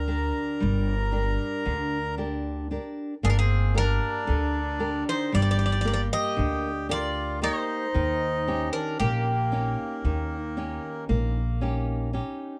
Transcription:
Already playing: D2 D3 A#4 G5
0.08 D4 G4 A#4
0.60 G1 G3
1.12 D4 G4 A#4
1.65 D2 D3
2.18 D4 G4 A#4
2.71 D4 G4 A#4
3.23 G1 A#3 D4 G#4
3.30 D4 A#4
3.39 C4 G#4
3.74 D4 G4 A#4
4.27 D2 D3
4.79 D4 G4 A#4
5.09 D#4 C5
5.32 G1 G3 G4 D5
5.42 D5
5.51 D5
5.59 D5
5.66 D5
5.72 D5
5.81 A#3 G4 D5
5.86 A#4 D5
5.93 D5
6.13 G4 D#5
6.37 D2 D3
6.89 F4 G4 A#4 D5
7.42 A#3 D#4 G4 A#4 C5
7.94 D#2 D#3
8.47 C#4 D#4 G4
8.73 D4 A#4
8.99 A#1 A#3 G4
9.52 C#4 D#4 G4
10.05 D#2 D#3
10.57 C#4 D#4 G4
11.09 A#1 A#3
11.61 C#4 D#4 G4
12.13 C#4 D#4 G4

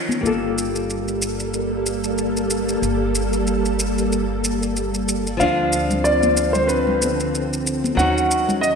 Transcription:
Already playing: D#3 F3 C#4 D#4 A#4
0.09 high conga, shaker
0.21 G1 G3 A#3 A4
0.25 F4 A4, shaker
0.58 shaker
0.76 shaker
0.90 shaker
1.08 shaker
1.22 shaker
1.40 shaker
1.54 shaker
1.86 shaker
2.04 shaker
2.18 shaker
2.37 shaker
2.50 shaker
2.69 shaker
2.82 G1, shaker
3.15 shaker
3.33 shaker
3.47 shaker
3.65 shaker
3.79 shaker
3.98 shaker
4.12 shaker
4.44 shaker
4.63 shaker
4.77 shaker
4.94 shaker
5.09 shaker
5.27 shaker
5.37 D2 D3 F3 C4 D4 F5, shaker
5.43 F4
5.73 shaker
5.91 low conga, shaker
6.04 D5, shaker
6.23 high conga, shaker
6.37 shaker
6.53 C5, low conga, shaker
6.68 B4, shaker
6.87 low conga
7.02 high conga, shaker
7.20 shaker
7.35 shaker
7.53 shaker
7.67 shaker
7.84 high conga, shaker
7.95 D#2 D#3 F#3 C#4 D#4 F#5
7.99 F#4, shaker
8.18 shaker
8.31 shaker
8.49 low conga, shaker
8.61 D#5, shaker

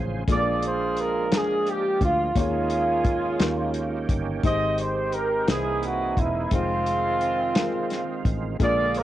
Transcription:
Already playing: A1 G#2 C#3 F3 G#3 F4 G#4 A#4 C5 F5 G#5
0.28 A#1 A#2 F3 G#3 A#3 D4 F4 G#4 A4 D5, kick, closed hi-hat
0.35 A#4
0.62 closed hi-hat
0.67 C5
0.97 closed hi-hat
1.01 A#4
1.31 G#3 D4 F4 A#4, snare, closed hi-hat
1.37 G#4
1.67 G4, closed hi-hat
2.01 D2 F4, kick, closed hi-hat
2.35 D#2 D#3 G#3 A#3 C#4 D#4 G4 G#4 C#5, kick, closed hi-hat
2.39 F4 G#4
2.70 closed hi-hat
3.05 kick, closed hi-hat
3.39 D#2 D#3 A#3 C#4 D#4 F4 G4 C#5, snare, closed hi-hat
3.47 G4
3.74 closed hi-hat
4.09 G1, kick, closed hi-hat
4.43 G#1 G#2 D#3 G#3 C4 D#4 G4 C5 D#5, kick, closed hi-hat
4.78 C5, closed hi-hat
5.13 A#4, closed hi-hat
5.47 C2 C3 E3 A#3 C4 D#4 E4 G#4 B4, snare, closed hi-hat
5.55 C5
5.83 F#4, closed hi-hat
6.17 E1 E4, kick, closed hi-hat
6.51 F1 D#3 G#3 C4 D#4 F4 C5, kick, closed hi-hat
6.86 closed hi-hat
7.21 closed hi-hat
7.55 G#3 D#4 F4 A#4, snare, closed hi-hat
7.90 snare, closed hi-hat
8.25 A1, kick, closed hi-hat
8.59 A#1 A#2 D3 G#3 A#3 D4 F4 G#4 A#4, kick, closed hi-hat
8.64 D5
8.95 A#4, closed hi-hat

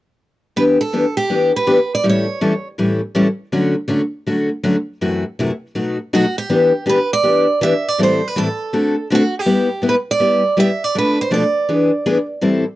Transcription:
0.56 E3 B3 D4 G4 B4
0.81 A4
0.93 E3 B3 D4 G4
1.17 G4
1.30 E3 B3 D4 G4
1.56 B4
1.67 E3 B3 D4 G4
1.95 D5
2.04 A2 E3 G3 C#4 E4 A4
2.10 C#5
2.41 A2 E3 G3 C#4 E4 A4
2.78 A2 E3 G3 C#4 E4 A4
3.15 A2 E3 G3 C#4 E4 A4
3.52 D3 F#3 A3 C#4 F#4
3.88 D3 F#3 A3 C#4 F#4
4.26 D3 F#3 A3 C#4 F#4
4.63 D3 F#3 A3 C#4 F#4
5.01 F#2 C3 E3 A3 E4 F#4
5.39 F#2 C3 E3 A3 E4 F#4
5.75 B2 F#3 A3 D#4 F#4
6.13 B2 F#3 A3 D#4 F#4
6.38 G4
6.50 E3 B3 D4 G4
6.86 E3 B3 D4 G4 B4
7.13 D5
7.23 E3 B3 D4 G4
7.61 E3 B3 D4 G4 E5
7.89 D5
7.98 A2 E3 G3 C4 E4 A4
8.03 C5
8.28 B4
8.36 A2 E3 G3 C4 E4 A4
8.73 D3 A3 C4 F#4 A4
9.10 D3 A3 C4 F#4 A4
9.15 F#4
9.39 G4
9.46 G3 B3 E4 G4
9.82 G3 B3 E4 G4
9.89 B4
10.11 D5
10.20 G3 B3 E4 G4
10.57 G3 B3 E4 G4 E5
10.84 D5
10.95 B2 F3 A3 D4 A4 B4
11.21 C5
11.31 B2 F3 A3 D4 A4 D5
11.69 E3 B3 D4 G#4
12.06 E3 B3 D4 G#4
12.41 A2 E3 G3 C4 E4 A4

